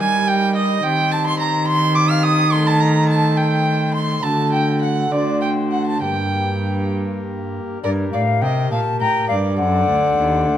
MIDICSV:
0, 0, Header, 1, 5, 480
1, 0, Start_track
1, 0, Key_signature, -2, "minor"
1, 0, Tempo, 564972
1, 713, Time_signature, 6, 3, 24, 8
1, 3596, Tempo, 601202
1, 6476, Tempo, 580833
1, 8737, End_track
2, 0, Start_track
2, 0, Title_t, "Flute"
2, 0, Program_c, 0, 73
2, 6, Note_on_c, 0, 80, 94
2, 241, Note_off_c, 0, 80, 0
2, 247, Note_on_c, 0, 79, 94
2, 299, Note_off_c, 0, 79, 0
2, 482, Note_on_c, 0, 75, 94
2, 712, Note_off_c, 0, 75, 0
2, 719, Note_on_c, 0, 79, 95
2, 772, Note_off_c, 0, 79, 0
2, 952, Note_on_c, 0, 81, 83
2, 1003, Note_off_c, 0, 81, 0
2, 1075, Note_on_c, 0, 84, 95
2, 1126, Note_off_c, 0, 84, 0
2, 1194, Note_on_c, 0, 82, 84
2, 1424, Note_off_c, 0, 82, 0
2, 1433, Note_on_c, 0, 84, 97
2, 1671, Note_on_c, 0, 86, 100
2, 1684, Note_off_c, 0, 84, 0
2, 1778, Note_off_c, 0, 86, 0
2, 1783, Note_on_c, 0, 77, 95
2, 1910, Note_on_c, 0, 87, 98
2, 1923, Note_off_c, 0, 77, 0
2, 2140, Note_off_c, 0, 87, 0
2, 2145, Note_on_c, 0, 84, 96
2, 2196, Note_off_c, 0, 84, 0
2, 2262, Note_on_c, 0, 81, 88
2, 2377, Note_on_c, 0, 82, 81
2, 2389, Note_off_c, 0, 81, 0
2, 2610, Note_off_c, 0, 82, 0
2, 2615, Note_on_c, 0, 81, 90
2, 2859, Note_on_c, 0, 79, 91
2, 2872, Note_off_c, 0, 81, 0
2, 3349, Note_on_c, 0, 84, 90
2, 3362, Note_off_c, 0, 79, 0
2, 3589, Note_on_c, 0, 81, 88
2, 3601, Note_off_c, 0, 84, 0
2, 3825, Note_off_c, 0, 81, 0
2, 3829, Note_on_c, 0, 79, 80
2, 4057, Note_off_c, 0, 79, 0
2, 4062, Note_on_c, 0, 78, 81
2, 4115, Note_off_c, 0, 78, 0
2, 4303, Note_on_c, 0, 74, 73
2, 4537, Note_on_c, 0, 79, 85
2, 4549, Note_off_c, 0, 74, 0
2, 4770, Note_off_c, 0, 79, 0
2, 4775, Note_on_c, 0, 78, 66
2, 4902, Note_on_c, 0, 81, 75
2, 4914, Note_off_c, 0, 78, 0
2, 5020, Note_on_c, 0, 79, 68
2, 5032, Note_off_c, 0, 81, 0
2, 5753, Note_off_c, 0, 79, 0
2, 6471, Note_on_c, 0, 74, 97
2, 6526, Note_off_c, 0, 74, 0
2, 6711, Note_on_c, 0, 77, 96
2, 6953, Note_on_c, 0, 79, 87
2, 6965, Note_off_c, 0, 77, 0
2, 7189, Note_off_c, 0, 79, 0
2, 7194, Note_on_c, 0, 81, 103
2, 7432, Note_off_c, 0, 81, 0
2, 7438, Note_on_c, 0, 82, 119
2, 7665, Note_off_c, 0, 82, 0
2, 7670, Note_on_c, 0, 77, 92
2, 7726, Note_off_c, 0, 77, 0
2, 7911, Note_on_c, 0, 78, 110
2, 8737, Note_off_c, 0, 78, 0
2, 8737, End_track
3, 0, Start_track
3, 0, Title_t, "Violin"
3, 0, Program_c, 1, 40
3, 0, Note_on_c, 1, 80, 113
3, 236, Note_on_c, 1, 79, 115
3, 249, Note_off_c, 1, 80, 0
3, 466, Note_off_c, 1, 79, 0
3, 471, Note_on_c, 1, 75, 105
3, 708, Note_on_c, 1, 79, 122
3, 721, Note_off_c, 1, 75, 0
3, 950, Note_on_c, 1, 81, 114
3, 962, Note_off_c, 1, 79, 0
3, 1069, Note_off_c, 1, 81, 0
3, 1076, Note_on_c, 1, 84, 109
3, 1181, Note_off_c, 1, 84, 0
3, 1186, Note_on_c, 1, 82, 102
3, 1416, Note_off_c, 1, 82, 0
3, 1421, Note_on_c, 1, 84, 122
3, 1656, Note_on_c, 1, 86, 117
3, 1669, Note_off_c, 1, 84, 0
3, 1783, Note_on_c, 1, 89, 102
3, 1796, Note_off_c, 1, 86, 0
3, 1894, Note_on_c, 1, 87, 113
3, 1907, Note_off_c, 1, 89, 0
3, 2138, Note_on_c, 1, 84, 110
3, 2151, Note_off_c, 1, 87, 0
3, 2269, Note_on_c, 1, 81, 110
3, 2282, Note_off_c, 1, 84, 0
3, 2380, Note_on_c, 1, 82, 105
3, 2393, Note_off_c, 1, 81, 0
3, 2619, Note_off_c, 1, 82, 0
3, 2622, Note_on_c, 1, 81, 103
3, 2864, Note_on_c, 1, 79, 101
3, 2876, Note_off_c, 1, 81, 0
3, 3344, Note_off_c, 1, 79, 0
3, 3349, Note_on_c, 1, 84, 104
3, 3591, Note_on_c, 1, 81, 107
3, 3603, Note_off_c, 1, 84, 0
3, 3823, Note_off_c, 1, 81, 0
3, 3827, Note_on_c, 1, 79, 95
3, 4056, Note_off_c, 1, 79, 0
3, 4061, Note_on_c, 1, 78, 86
3, 4301, Note_on_c, 1, 74, 89
3, 4313, Note_off_c, 1, 78, 0
3, 4533, Note_off_c, 1, 74, 0
3, 4538, Note_on_c, 1, 79, 90
3, 4602, Note_off_c, 1, 79, 0
3, 4777, Note_on_c, 1, 78, 69
3, 4896, Note_off_c, 1, 78, 0
3, 4903, Note_on_c, 1, 81, 83
3, 5017, Note_off_c, 1, 81, 0
3, 5022, Note_on_c, 1, 79, 85
3, 5739, Note_off_c, 1, 79, 0
3, 6473, Note_on_c, 1, 70, 86
3, 6539, Note_off_c, 1, 70, 0
3, 6719, Note_on_c, 1, 74, 83
3, 6785, Note_off_c, 1, 74, 0
3, 6962, Note_on_c, 1, 75, 78
3, 7196, Note_off_c, 1, 75, 0
3, 7201, Note_on_c, 1, 77, 92
3, 7267, Note_off_c, 1, 77, 0
3, 7443, Note_on_c, 1, 79, 94
3, 7673, Note_off_c, 1, 79, 0
3, 7678, Note_on_c, 1, 74, 90
3, 7916, Note_off_c, 1, 74, 0
3, 7922, Note_on_c, 1, 74, 99
3, 8737, Note_off_c, 1, 74, 0
3, 8737, End_track
4, 0, Start_track
4, 0, Title_t, "Pipe organ"
4, 0, Program_c, 2, 19
4, 0, Note_on_c, 2, 55, 72
4, 0, Note_on_c, 2, 63, 57
4, 0, Note_on_c, 2, 67, 56
4, 0, Note_on_c, 2, 70, 58
4, 659, Note_off_c, 2, 63, 0
4, 666, Note_off_c, 2, 67, 0
4, 672, Note_off_c, 2, 70, 0
4, 677, Note_off_c, 2, 55, 0
4, 677, Note_on_c, 2, 60, 56
4, 690, Note_on_c, 2, 67, 57
4, 703, Note_on_c, 2, 72, 58
4, 717, Note_on_c, 2, 51, 57
4, 2090, Note_off_c, 2, 60, 0
4, 2096, Note_off_c, 2, 67, 0
4, 2102, Note_off_c, 2, 72, 0
4, 2103, Note_on_c, 2, 57, 54
4, 2116, Note_on_c, 2, 69, 54
4, 2129, Note_on_c, 2, 72, 55
4, 3539, Note_off_c, 2, 57, 0
4, 3549, Note_off_c, 2, 69, 0
4, 3555, Note_off_c, 2, 72, 0
4, 3556, Note_on_c, 2, 57, 56
4, 3563, Note_off_c, 2, 51, 0
4, 3570, Note_on_c, 2, 66, 48
4, 3584, Note_on_c, 2, 69, 51
4, 3597, Note_on_c, 2, 50, 56
4, 4244, Note_off_c, 2, 57, 0
4, 4259, Note_off_c, 2, 66, 0
4, 4260, Note_on_c, 2, 57, 54
4, 4269, Note_off_c, 2, 50, 0
4, 4273, Note_off_c, 2, 69, 0
4, 4275, Note_on_c, 2, 66, 54
4, 4284, Note_on_c, 2, 72, 55
4, 4295, Note_on_c, 2, 50, 61
4, 4979, Note_off_c, 2, 57, 0
4, 4984, Note_on_c, 2, 58, 45
4, 4987, Note_off_c, 2, 50, 0
4, 4987, Note_off_c, 2, 66, 0
4, 4992, Note_off_c, 2, 72, 0
4, 4995, Note_on_c, 2, 67, 47
4, 5007, Note_on_c, 2, 70, 43
4, 5020, Note_on_c, 2, 43, 48
4, 6281, Note_off_c, 2, 43, 0
4, 6426, Note_off_c, 2, 58, 0
4, 6431, Note_off_c, 2, 67, 0
4, 6437, Note_off_c, 2, 70, 0
4, 6438, Note_on_c, 2, 62, 53
4, 6453, Note_on_c, 2, 67, 57
4, 6464, Note_on_c, 2, 70, 50
4, 6476, Note_on_c, 2, 43, 60
4, 6691, Note_off_c, 2, 62, 0
4, 6694, Note_off_c, 2, 43, 0
4, 6718, Note_on_c, 2, 45, 59
4, 6935, Note_off_c, 2, 45, 0
4, 6959, Note_on_c, 2, 48, 69
4, 7176, Note_off_c, 2, 48, 0
4, 7203, Note_on_c, 2, 46, 66
4, 7418, Note_off_c, 2, 46, 0
4, 7442, Note_on_c, 2, 45, 67
4, 7658, Note_off_c, 2, 45, 0
4, 7682, Note_on_c, 2, 43, 58
4, 7877, Note_off_c, 2, 67, 0
4, 7881, Note_on_c, 2, 62, 52
4, 7883, Note_off_c, 2, 70, 0
4, 7895, Note_on_c, 2, 69, 54
4, 7899, Note_off_c, 2, 43, 0
4, 7906, Note_on_c, 2, 72, 51
4, 7919, Note_on_c, 2, 42, 62
4, 8136, Note_off_c, 2, 42, 0
4, 8157, Note_on_c, 2, 38, 66
4, 8373, Note_off_c, 2, 38, 0
4, 8399, Note_on_c, 2, 39, 69
4, 8614, Note_off_c, 2, 39, 0
4, 8637, Note_on_c, 2, 38, 61
4, 8737, Note_off_c, 2, 38, 0
4, 8737, Note_off_c, 2, 62, 0
4, 8737, Note_off_c, 2, 69, 0
4, 8737, Note_off_c, 2, 72, 0
4, 8737, End_track
5, 0, Start_track
5, 0, Title_t, "Cello"
5, 0, Program_c, 3, 42
5, 0, Note_on_c, 3, 55, 82
5, 697, Note_off_c, 3, 55, 0
5, 719, Note_on_c, 3, 51, 90
5, 3564, Note_off_c, 3, 51, 0
5, 3596, Note_on_c, 3, 50, 84
5, 4269, Note_off_c, 3, 50, 0
5, 4297, Note_on_c, 3, 50, 67
5, 5020, Note_on_c, 3, 43, 80
5, 5032, Note_off_c, 3, 50, 0
5, 6313, Note_off_c, 3, 43, 0
5, 6476, Note_on_c, 3, 43, 85
5, 6701, Note_off_c, 3, 43, 0
5, 6714, Note_on_c, 3, 45, 80
5, 6956, Note_on_c, 3, 48, 80
5, 6969, Note_off_c, 3, 45, 0
5, 7189, Note_off_c, 3, 48, 0
5, 7194, Note_on_c, 3, 46, 82
5, 7260, Note_off_c, 3, 46, 0
5, 7435, Note_on_c, 3, 45, 75
5, 7501, Note_off_c, 3, 45, 0
5, 7680, Note_on_c, 3, 43, 77
5, 7925, Note_on_c, 3, 42, 90
5, 7937, Note_off_c, 3, 43, 0
5, 8158, Note_off_c, 3, 42, 0
5, 8163, Note_on_c, 3, 38, 75
5, 8395, Note_off_c, 3, 38, 0
5, 8405, Note_on_c, 3, 39, 75
5, 8644, Note_on_c, 3, 38, 82
5, 8656, Note_off_c, 3, 39, 0
5, 8737, Note_off_c, 3, 38, 0
5, 8737, End_track
0, 0, End_of_file